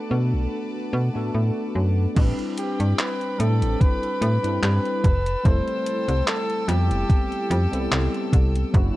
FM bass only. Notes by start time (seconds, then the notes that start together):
0.11 B2
0.33 B1
0.93 B2
1.15 A2
1.34 A2
1.75 F#2
2.16 A1
2.80 G2
3.40 A2
3.62 A1
4.22 A2
4.44 G2
4.63 G2
5.04 F1
5.45 F1
6.08 C2
6.68 F2
6.90 F1
7.50 F2
7.73 C2
7.92 C2
8.33 C2
8.74 F#1